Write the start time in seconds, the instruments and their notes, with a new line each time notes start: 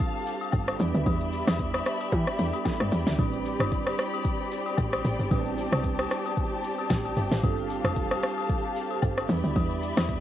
Already playing: tine electric piano G3 C4 D4 F4 A4, string section C4 G4 F5 A5
0.00 kick, shaker
0.27 open hi-hat, shaker
0.41 high agogo, shaker
0.52 log drum bass G1, kick, low woodblock, shaker
0.68 cross-stick, high agogo, shaker
0.79 log drum bass E2, tine electric piano G3 B3 D4 E4 B4, string section D5 E5 B5, open hi-hat, shaker
0.94 log drum bass D2, shaker
1.06 log drum bass E2, kick, high agogo, shaker
1.21 shaker
1.33 open hi-hat, shaker
1.47 log drum bass E2, cross-stick, snare, high agogo, shaker
1.59 kick, shaker
1.74 cross-stick, high agogo, shaker
1.86 tine electric piano A5, cross-stick, open hi-hat, shaker
2.00 high agogo, shaker
2.12 log drum bass E3, tine electric piano G5, kick, shaker
2.27 cross-stick, shaker
2.39 log drum bass E2, tine electric piano G3 B3 D4 E4 A4, open hi-hat, shaker
2.53 high agogo, shaker
2.65 tine electric piano E5, kick, snare, low woodblock, shaker
2.80 log drum bass G2, cross-stick, high agogo, shaker
2.92 log drum bass E2, open hi-hat, shaker
3.07 log drum bass D2, snare, shaker
3.18 log drum bass A1, tine electric piano G3 C4 D4 E4 B4, string section C4 B5, kick, high agogo, shaker
3.33 shaker
3.45 open hi-hat, shaker
3.60 log drum bass G1, cross-stick, high agogo, shaker
3.72 kick, shaker
3.87 cross-stick, high agogo, shaker
3.98 cross-stick, open hi-hat, shaker
4.13 high agogo, shaker
4.25 kick, shaker
4.52 open hi-hat, shaker
4.66 high agogo, shaker
4.77 log drum bass A1, kick, low woodblock, shaker
4.93 cross-stick, high agogo, shaker
5.05 log drum bass A1, open hi-hat, shaker
5.19 log drum bass G1, shaker
5.31 log drum bass A1, tine electric piano G3 B3 D4 E4 B4, string section A5, kick, high agogo, shaker
5.37 tine electric piano C4
5.46 shaker
5.58 open hi-hat, shaker
5.72 log drum bass C2, cross-stick, high agogo, shaker
5.84 kick, shaker
5.99 cross-stick, high agogo, shaker
6.11 cross-stick, open hi-hat, shaker
6.25 high agogo, shaker
6.37 kick, shaker
6.64 open hi-hat, shaker
6.78 high agogo, shaker
6.90 log drum bass A1, tine electric piano A5, kick, snare, low woodblock, shaker
7.05 tine electric piano G5, high agogo, shaker
7.17 log drum bass G1, tine electric piano E5, open hi-hat, shaker
7.32 log drum bass A1, tine electric piano C5, snare, shaker
7.43 log drum bass G1, tine electric piano G3 C4 D4 F4 A4, string section F5 A5, kick, high agogo, shaker
7.58 shaker
7.70 open hi-hat, shaker
7.84 log drum bass F1, cross-stick, high agogo, shaker
7.96 kick, shaker
8.11 cross-stick, high agogo, shaker
8.23 cross-stick, open hi-hat, shaker
8.38 high agogo, shaker
8.49 kick, shaker
8.76 tine electric piano A4, open hi-hat, shaker
8.91 tine electric piano C5, high agogo, shaker
9.02 log drum bass G1, kick, low woodblock, shaker
9.17 tine electric piano A4, cross-stick, high agogo, shaker
9.28 log drum bass E2, tine electric piano G3 B3 D4 E4 A4, string section D5 E5 B5, open hi-hat, shaker
9.37 tine electric piano B4
9.44 log drum bass D2, shaker
9.56 log drum bass E2, kick, high agogo, shaker
9.70 shaker
9.82 open hi-hat, shaker
9.97 log drum bass E2, cross-stick, snare, high agogo, shaker
10.09 kick, shaker